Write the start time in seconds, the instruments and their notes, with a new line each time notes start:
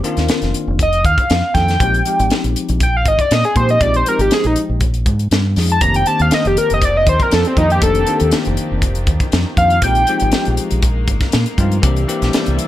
0.03 tine electric piano D#3 A#3 C4 D4 F4, closed hi-hat
0.17 fingered electric bass D#2, snare, closed hi-hat
0.28 muted fingered electric bass stroke, snare, closed hi-hat
0.42 fingered electric bass F1, snare, closed hi-hat
0.54 closed hi-hat
0.68 fingered electric bass F1
0.79 analog synth lead D#5, kick, closed hi-hat
0.93 closed hi-hat
1.04 fingered electric bass D#2, analog synth lead F5, kick, closed hi-hat
1.18 kick, closed hi-hat
1.30 fingered electric bass F2, snare, closed hi-hat
1.54 fingered electric bass F2, tine electric piano D#3 A#3 C4 D4 A4, analog synth lead G5, kick, snare, closed hi-hat
1.68 snare, closed hi-hat
1.80 fingered electric bass A#1, tine electric piano F3 G#3 C4 D#4 G4, kick, closed hi-hat
1.94 closed hi-hat
2.05 tine electric piano F3 G#3 C4 D#4 G4, closed hi-hat
2.19 fingered electric bass G#1, closed hi-hat
2.30 snare, closed hi-hat
2.44 fingered electric bass A#1, closed hi-hat
2.56 closed hi-hat
2.69 fingered electric bass A#1, closed hi-hat
2.80 analog synth lead G5, kick, closed hi-hat
2.97 analog synth lead F5
3.05 fingered electric bass G#1, analog synth lead D#5, kick, closed hi-hat
3.19 analog synth lead D5, kick, closed hi-hat
3.31 fingered electric bass A#2, analog synth lead D#5, snare, closed hi-hat
3.44 analog synth lead G#4, closed hi-hat
3.55 fingered electric bass A#2, tine electric piano F3 G#3 C4 D#4 G4, analog synth lead C5, kick, closed hi-hat
3.69 analog synth lead D#5, closed hi-hat
3.81 fingered electric bass A#1, tine electric piano F3 G#3 C4 D#4 G4, analog synth lead D5, kick, closed hi-hat
3.94 analog synth lead C5, closed hi-hat
4.06 tine electric piano F3 G#3 C4 D#4 G4, analog synth lead A#4, closed hi-hat
4.19 fingered electric bass G#1, analog synth lead G4, closed hi-hat
4.31 analog synth lead G#4, muted fingered electric bass stroke, snare, closed hi-hat
4.44 fingered electric bass A#1, analog synth lead D#4, closed hi-hat
4.56 closed hi-hat
4.69 fingered electric bass A#1
4.81 kick, closed hi-hat
4.94 closed hi-hat
5.06 fingered electric bass G#2, kick, closed hi-hat
5.19 closed hi-hat
5.31 fingered electric bass G2, snare, closed hi-hat
5.56 fingered electric bass F2, tine electric piano F3 G#3 C4 D#4 G#4, snare, open hi-hat
5.70 analog synth lead A5, closed hi-hat
5.81 fingered electric bass F1, tine electric piano D#3 A#3 C4 D4 G4, string section D#3 F3 A#3 C4 D4 G4, analog synth lead A#5, kick, closed hi-hat
5.94 analog synth lead G5, closed hi-hat
6.06 tine electric piano D#3 A#3 C4 D4 G4, analog synth lead A5, closed hi-hat
6.19 fingered electric bass D#2, analog synth lead F5, closed hi-hat
6.31 analog synth lead D#5, muted fingered electric bass stroke, snare, closed hi-hat
6.45 fingered electric bass F1, analog synth lead G4, closed hi-hat
6.57 analog synth lead A#4, closed hi-hat
6.70 fingered electric bass F1, analog synth lead D#5, closed hi-hat
6.82 analog synth lead D5, kick, closed hi-hat
6.97 analog synth lead D#5
7.07 fingered electric bass D#2, analog synth lead C5, kick, closed hi-hat
7.20 analog synth lead A#4, kick, closed hi-hat
7.31 fingered electric bass F2, analog synth lead A4, snare, closed hi-hat
7.45 analog synth lead C4, closed hi-hat
7.57 fingered electric bass F2, tine electric piano D#3 A#3 C4 D4 F4, analog synth lead D#4, kick, closed hi-hat
7.70 analog synth lead G4, closed hi-hat
7.82 fingered electric bass F1, tine electric piano D#3 A#3 C4 D4 G4, analog synth lead A4, kick, closed hi-hat
7.95 closed hi-hat
8.07 tine electric piano D#3 A#3 C4 D4 G4, closed hi-hat
8.20 fingered electric bass D#2, closed hi-hat
8.31 muted fingered electric bass stroke, snare, closed hi-hat
8.45 fingered electric bass F1, closed hi-hat
8.57 closed hi-hat
8.72 fingered electric bass F1
8.82 kick, closed hi-hat
8.95 closed hi-hat
9.07 fingered electric bass D#2, kick, closed hi-hat
9.20 kick, closed hi-hat
9.32 fingered electric bass F2, snare, closed hi-hat
9.56 fingered electric bass F2, tine electric piano D#3 A#3 C4 D4 F4, analog synth lead F5, kick, closed hi-hat
9.70 closed hi-hat
9.82 fingered electric bass A#1, tine electric piano F3 G#3 C4 D#4 G4, string section G#3 A#3, analog synth lead G5, kick, closed hi-hat
9.95 closed hi-hat
10.07 tine electric piano F3 G#3 C4 D#4 G4, closed hi-hat
10.20 fingered electric bass G#1, closed hi-hat
10.32 snare, closed hi-hat
10.45 fingered electric bass A#1, closed hi-hat
10.57 closed hi-hat
10.71 fingered electric bass A#1, closed hi-hat
10.82 kick, closed hi-hat
11.07 fingered electric bass G#1, kick, closed hi-hat
11.20 kick, snare, closed hi-hat
11.32 fingered electric bass A#2, snare, closed hi-hat
11.46 closed hi-hat
11.58 fingered electric bass G2, tine electric piano F3 G#3 C4 D#4 F4, kick, closed hi-hat
11.72 closed hi-hat
11.82 fingered electric bass C2, string section C3 G3, tine electric piano E3 A#3 C4 D4 G4, kick, closed hi-hat
11.86 string section D4 E4
11.96 closed hi-hat
12.07 tine electric piano E3 A#3 C4 D4 G4, closed hi-hat
12.22 fingered electric bass A#1, snare, closed hi-hat
12.33 snare, closed hi-hat
12.46 fingered electric bass C2, closed hi-hat
12.59 closed hi-hat